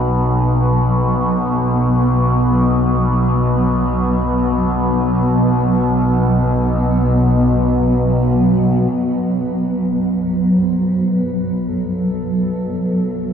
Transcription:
Already playing: B1 B2 F#3 B3 B4 F#5
8.93 B1 B2 F#3
9.28 B3
10.58 C5
11.12 B4
11.68 A4
12.45 F#4

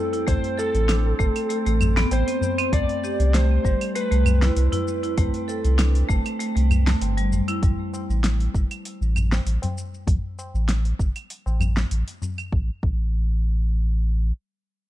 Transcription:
Already playing: C4 E4 A4
0.13 E4, open hi-hat, shaker
0.27 A1 A3 C5, kick, open hi-hat, tabla ge, shaker
0.44 open hi-hat
0.58 A4, shaker
0.75 A1, open hi-hat, shaker
0.88 D4, snare, open hi-hat, shaker
1.06 tabla tin
1.19 G1 A3, kick, tabla na, shaker
1.36 open hi-hat, claves, shaker
1.50 A3, open hi-hat, shaker
1.66 A1 A3, open hi-hat, shaker
1.81 tabla ge, claves, shaker
1.97 B3, snare, open hi-hat, shaker
2.11 A1 C5, open hi-hat, tabla na, shaker
2.28 C4, open hi-hat, shaker
2.41 tabla ge, shaker
2.58 C4, open hi-hat, claves, shaker
2.73 C2 A3 D5, kick, open hi-hat, tabla ge, shaker
2.89 open hi-hat
3.04 G4, shaker
3.20 C2, open hi-hat, shaker
3.34 A3 C5, snare, open hi-hat, shaker
3.50 tabla tin
3.64 G1 G3, kick, shaker
3.81 open hi-hat, claves, shaker
3.95 A3 B4, open hi-hat, shaker
4.11 C2 A3, open hi-hat, shaker
4.25 tabla ge, claves, shaker
4.42 E4, snare, open hi-hat, tabla tin, shaker
4.56 C2, open hi-hat, shaker
4.72 E4, open hi-hat, tabla ge, shaker
4.88 shaker
5.03 E4, open hi-hat, shaker
5.17 C2 A3, kick, open hi-hat, tabla ge, shaker
5.34 open hi-hat, shaker
5.48 A4, tabla na, shaker
5.65 C2, open hi-hat, shaker
5.78 D4, snare, open hi-hat, shaker
5.95 open hi-hat, tabla tin, shaker
6.09 G1 A3, kick, tabla na, shaker
6.26 open hi-hat, claves, shaker
6.40 A3, open hi-hat, shaker
6.56 C2 A3, open hi-hat, shaker
6.71 tabla ge, claves, shaker
6.86 A3, snare, open hi-hat, shaker
7.01 G1, open hi-hat, tabla na, shaker
7.17 G3, open hi-hat, shaker
7.32 tabla ge, shaker
7.48 E4, open hi-hat, claves, shaker
7.62 A1, kick, open hi-hat, tabla ge, shaker
7.93 tabla na, shaker
8.10 A1, shaker
8.24 snare, open hi-hat, shaker
8.40 open hi-hat, tabla tin
8.54 G1, kick, shaker
8.71 open hi-hat, claves, shaker
8.85 open hi-hat, shaker
9.01 A1, shaker
9.16 tabla ge, claves, shaker
9.32 snare, tabla tin, shaker
9.46 A1, open hi-hat, shaker
9.62 open hi-hat, tabla na, tabla ge, shaker
9.78 shaker
9.94 shaker
10.07 A1, kick, open hi-hat, tabla ge, shaker
10.39 tabla na, shaker
10.54 A1, shaker
10.69 snare, open hi-hat, shaker
10.85 open hi-hat, tabla tin
10.99 G1, kick, shaker
11.16 open hi-hat, claves, shaker
11.30 open hi-hat, shaker
11.46 A1, tabla na, shaker
11.60 tabla ge, claves, shaker
11.77 snare, shaker
11.91 A1, open hi-hat, shaker
12.08 open hi-hat, shaker
12.22 tabla ge, shaker
12.38 claves, shaker
12.52 A1, kick
12.83 A1, kick

